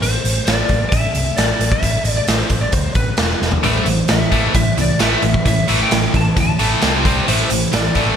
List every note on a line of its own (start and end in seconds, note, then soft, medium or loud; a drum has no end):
0.02 0.16 A1 medium
0.02 0.45 C5 medium
0.02 closed hi-hat medium
0.24 0.39 A1 medium
0.24 closed hi-hat medium
0.45 0.61 A1 medium
0.45 0.93 D5 medium
0.45 snare loud
0.45 closed hi-hat medium
0.69 0.84 A1 medium
0.69 kick medium
0.69 closed hi-hat medium
0.89 1.07 A1 medium
0.89 1.37 E5 loud
0.89 kick loud
0.89 closed hi-hat medium
1.15 1.29 C2 medium
1.15 closed hi-hat medium
1.37 1.52 A1 medium
1.37 1.72 D5 medium
1.37 snare medium
1.37 closed hi-hat medium
1.59 1.74 A1 medium
1.59 closed hi-hat medium
1.72 2.18 E5 medium
1.72 kick medium
1.83 1.97 A1 medium
1.83 kick medium
1.83 closed hi-hat medium
2.04 2.19 A1 medium
2.04 closed hi-hat medium
2.17 2.28 D5 medium
2.27 2.42 A1 medium
2.27 2.61 C5 medium
2.27 snare medium
2.27 closed hi-hat medium
2.49 2.65 A1 medium
2.49 kick medium
2.49 closed hi-hat medium
2.61 2.73 D5 medium
2.72 2.87 D2 medium
2.72 2.95 C5 medium
2.72 kick loud
2.72 closed hi-hat medium
2.95 3.10 A1 medium
2.95 3.38 B4 medium
2.95 kick medium
2.95 closed hi-hat medium
3.17 3.33 E1 medium
3.17 snare loud
3.17 closed hi-hat medium
3.41 3.56 E1 medium
3.41 snare medium
3.52 floor tom medium
3.63 3.78 A1 medium
3.63 3.85 A2 medium
3.63 3.85 E3 medium
3.63 3.86 A3 medium
3.63 4.11 C5 medium
3.63 closed hi-hat medium
3.86 4.01 A1 medium
3.86 4.07 A2 medium
3.86 4.07 E3 medium
3.86 closed hi-hat medium
4.08 4.24 A1 medium
4.08 4.30 A2 medium
4.08 4.30 E3 medium
4.08 4.52 E5 medium
4.08 snare medium
4.08 closed hi-hat medium
4.31 4.46 A1 medium
4.31 4.53 A2 medium
4.31 4.53 E3 medium
4.31 4.53 A3 loud
4.31 kick medium
4.31 closed hi-hat medium
4.54 4.69 A1 medium
4.54 4.75 A2 medium
4.54 4.75 E3 medium
4.54 4.76 E5 medium
4.54 kick loud
4.54 closed hi-hat medium
4.77 4.92 C2 medium
4.77 4.98 A2 medium
4.77 4.98 E3 medium
4.77 5.01 D5 medium
4.77 closed hi-hat medium
4.99 5.14 A1 medium
4.99 5.21 A2 medium
4.99 5.21 E3 medium
4.99 5.22 A3 medium
4.99 5.46 E5 medium
4.99 snare loud
4.99 closed hi-hat medium
5.22 5.37 A1 medium
5.22 5.43 A2 medium
5.22 5.43 E3 medium
5.22 closed hi-hat medium
5.34 kick medium
5.45 5.60 A1 medium
5.45 5.66 A2 medium
5.45 5.66 E3 medium
5.45 5.81 E5 medium
5.45 kick medium
5.45 closed hi-hat medium
5.68 5.83 A1 medium
5.68 5.90 A2 medium
5.68 5.90 E3 loud
5.68 5.90 A3 loud
5.68 closed hi-hat medium
5.83 6.13 G5 medium
5.91 6.06 A1 medium
5.91 6.11 A2 medium
5.91 6.11 E3 medium
5.91 snare loud
5.91 closed hi-hat medium
6.13 6.28 A1 medium
6.13 6.33 A2 medium
6.13 6.34 E3 medium
6.13 6.38 A5 medium
6.13 kick medium
6.13 closed hi-hat medium
6.37 6.51 D2 medium
6.37 6.57 A2 medium
6.37 6.57 E3 medium
6.37 7.02 A5 medium
6.37 kick loud
6.37 closed hi-hat medium
6.59 6.74 A1 medium
6.59 6.80 A2 medium
6.59 6.81 E3 medium
6.59 6.81 A3 medium
6.59 closed hi-hat medium
6.81 7.05 C2 medium
6.81 7.03 C3 medium
6.81 7.03 G3 medium
6.81 7.03 C4 loud
6.81 snare medium
6.81 closed hi-hat medium
7.04 7.19 C2 medium
7.04 7.26 C3 medium
7.04 7.26 G3 medium
7.04 7.26 C4 medium
7.04 kick medium
7.04 closed hi-hat medium
7.27 7.42 A1 medium
7.27 7.48 A2 medium
7.27 7.48 E3 medium
7.27 7.49 A3 medium
7.27 7.75 C5 medium
7.27 closed hi-hat medium
7.50 7.64 A1 medium
7.50 7.70 A2 medium
7.50 7.70 E3 medium
7.50 closed hi-hat medium
7.72 7.88 A1 medium
7.72 7.92 A2 medium
7.72 7.93 E3 medium
7.72 8.16 D5 medium
7.72 snare loud
7.72 closed hi-hat medium
7.95 8.09 A1 medium
7.95 8.16 A2 medium
7.95 8.16 E3 medium
7.95 8.16 A3 medium
7.95 kick medium
7.95 closed hi-hat medium